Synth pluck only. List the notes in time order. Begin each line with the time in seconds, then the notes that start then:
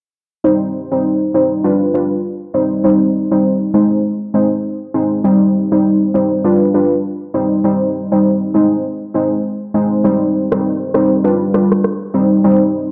0.44 G3 C4 D#4 C5
0.92 G3 C4 D#4 C5
1.34 G3 C4 D#4 C5
1.64 G3 D4 F4 B4
1.94 G3 D4 F4 B4
2.54 G3 C4 D#4 C5
2.84 G3 C4 D#4 C5
3.31 G3 C4 D#4 C5
3.74 G#3 C4 D#4 C5
4.34 G#3 C4 D#4 C5
4.94 G#3 C4 D#4 C5
5.24 G3 C4 D#4 C5
5.72 G3 C4 D#4 C5
6.14 G3 C4 D#4 C5
6.44 G3 D4 F4 B4
6.74 G3 D4 F4 B4
7.34 G3 C4 D#4 C5
7.64 G3 C4 D#4 C5
8.12 G3 C4 D#4 C5
8.54 G#3 C4 D#4 C5
9.14 G#3 C4 D#4 C5
9.74 G#3 C4 D#4 C5
10.04 G3 C4 D#4 C5
10.52 G3 C4 D#4 C5
10.94 G3 C4 D#4 C5
11.24 G3 D4 F4 B4
11.54 G3 D4 F4 B4
12.14 G3 C4 D#4 C5
12.44 G3 C4 D#4 C5